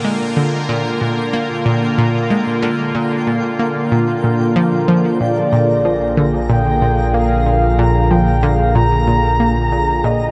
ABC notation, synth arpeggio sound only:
X:1
M:4/4
L:1/8
Q:1/4=93
K:Bbmix
V:1 name="Synth arpeggio sound" clef=bass
A, D, B,, B,, B, B,, B,, A, | D, B,, B,, B, B,, B,, F, F, | B,, B,, F, D, B,, B,, B, B,, | B,, F, D, B,, B,, B, B,, B,, |]